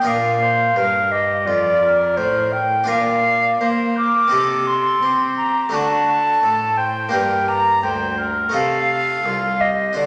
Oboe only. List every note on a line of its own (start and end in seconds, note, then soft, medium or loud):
0.07 0.41 D5 medium
0.42 0.78 C5 medium
0.77 1.11 A#4 medium
1.12 1.48 G4 medium
1.47 1.81 F4 medium
1.82 2.59 A#4 medium
2.88 3.56 D5 medium
3.61 3.98 C5 medium
3.97 4.31 A#4 medium
4.32 5.01 A4 medium
5.04 5.75 G4 medium
5.73 6.07 F#4 medium
6.08 6.42 F#4 medium
6.42 6.76 A4 medium
6.77 7.14 C5 medium
7.12 7.49 A#4 medium
7.47 7.82 D5 medium
7.83 8.17 C5 medium
8.18 8.53 A#4 medium
8.54 9.27 A4 medium
9.26 9.62 F4 medium
9.61 9.95 G4 medium
9.96 10.06 F#4 medium